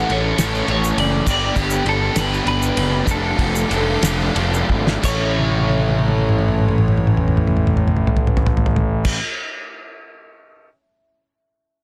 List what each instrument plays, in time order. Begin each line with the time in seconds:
Already playing: overdriven electric guitar A3 C#4 A4, analog synth pad A4 E5 C#6, clean electric guitar F#5
0.09 picked electric bass A1, overdriven electric guitar E3 A3 C#4 A4, clean electric guitar C#5, ride
0.37 picked electric bass A1, overdriven electric guitar E3 A3 C#4 A4, snare, ride, shaker
0.55 shaker
0.66 picked electric bass A1, overdriven electric guitar E3 A3 C#4 A4, ride
0.71 clean electric guitar C#5
0.84 shaker
0.97 picked electric bass F#1, clean electric guitar D5, ride
1.26 picked electric bass G1, overdriven electric guitar B3 D4 G4, analog synth pad A4 G5 B5, kick, crash, shaker
1.31 clean electric guitar D5
1.55 picked electric bass G1, overdriven electric guitar B3 D4 G4, kick, ride, shaker
1.60 clean electric guitar G4
1.70 shaker
1.85 picked electric bass G1, overdriven electric guitar B3 D4 G4, ride
1.89 clean electric guitar A4
2.14 picked electric bass G1, overdriven electric guitar B3 D4 G4, clean electric guitar B4, snare, ride, shaker
2.34 shaker
2.45 picked electric bass G1, overdriven electric guitar B3 D4 G4, clean electric guitar B4, ride
2.62 shaker
2.77 picked electric bass F#1, ride
3.05 picked electric bass F1, overdriven electric guitar F3 A3 D4, analog synth pad F5 D6, kick, ride, shaker
3.10 overdriven electric guitar A3, clean electric guitar A4
3.36 picked electric bass F1, overdriven electric guitar F3 A3 D4, kick, ride
3.56 shaker
3.69 picked electric bass F1, overdriven electric guitar F3 A3 D4, ride, shaker
3.73 overdriven electric guitar F3 A3 D4
4.01 picked electric bass F1, overdriven electric guitar F3 A3 D4, snare, ride, shaker
4.34 picked electric bass F1, overdriven electric guitar F3 A3 D4, ride
4.38 overdriven electric guitar F3 D4
4.54 shaker
4.69 picked electric bass G#1, kick
4.87 snare
5.02 picked electric bass A1, overdriven electric guitar E3 A3 C#4 E4, analog synth pad A3 E4 C#5, clean electric guitar C#5, kick, crash, shaker
5.06 overdriven electric guitar A4
5.39 high tom
5.49 high tom
5.59 high tom
5.69 high tom
5.78 high tom
5.89 high tom
5.99 high tom
6.08 high tom
6.18 high tom
6.29 mid tom
6.39 mid tom
6.48 mid tom
6.59 mid tom
6.69 mid tom
6.78 mid tom
6.88 mid tom
6.98 mid tom
7.07 mid tom
7.17 mid tom
7.28 mid tom
7.37 mid tom
7.47 mid tom
7.57 mid tom
7.67 mid tom
7.77 mid tom
7.88 mid tom
7.97 mid tom
8.07 floor tom
8.17 floor tom
8.27 floor tom
8.37 floor tom
8.46 floor tom
8.57 floor tom
8.66 floor tom
8.76 floor tom
9.05 kick, crash